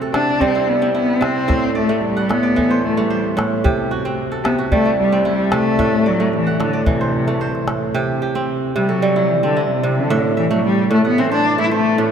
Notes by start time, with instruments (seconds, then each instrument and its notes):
Already playing: kora C3 A3 C4 F#4 G4
0.02 kora A4, calabash click
0.13 kora C3, cello D4, calabash click
0.40 kora G3, cello C4, calabash thump
0.55 kora E4
0.69 cello B3
0.82 kora C4
0.94 cello B3, kora E4
1.21 kora C3, cello C4, calabash click
1.48 kora A2 E5, calabash thump
1.75 cello A3, kora D5
1.89 kora A3
2.04 cello G3
2.17 kora F#5, calabash click
2.29 kora A2, cello B3, calabash click
2.43 kora D5
2.56 kora E3, calabash thump
2.70 kora C5
2.85 cello A3
2.97 cello G3, kora A3
3.10 kora C5
3.37 kora A2, calabash click
3.64 kora C3 G4, calabash thump
3.91 kora F#4
4.05 kora C4
4.32 kora A4, calabash click
4.44 kora C3, cello B3, calabash click
4.58 kora F#4
4.72 kora G3, cello A3, calabash thump
4.85 kora E4
5.00 cello G3
5.12 kora C4
5.25 cello G3, kora E4
5.52 kora C3, cello A3, calabash click
5.79 kora A2 E5, calabash thump
6.06 cello F#3, kora D5
6.20 kora A3, calabash click
6.33 cello E3, calabash click
6.47 kora F#5
6.53 cello E3
6.60 kora A2, cello D3, calabash click
6.73 kora D5
6.86 cello C3, kora E3, calabash thump
7.01 kora C5
7.28 kora A3
7.40 kora C5, calabash click
7.55 calabash click
7.67 kora A2, calabash click
7.94 kora C3 G4
8.22 kora G4
8.35 kora C4
8.76 kora C3, cello G3
8.89 cello F#3, kora A4
9.02 kora G3
9.16 kora E4
9.31 cello E3
9.43 cello D3, kora C4
9.56 kora E4
9.71 cello C3
9.83 kora C3
9.98 cello D3
10.10 kora A2 E5
10.37 cello E3, kora E5
10.51 cello F#3, kora A3
10.66 cello G3
10.91 kora A2, cello A3
11.05 cello B3, kora F#5
11.18 kora E3, cello C4
11.31 cello D4, kora C5
11.58 kora A3, cello E4
11.71 cello A3, kora C5
11.98 kora A2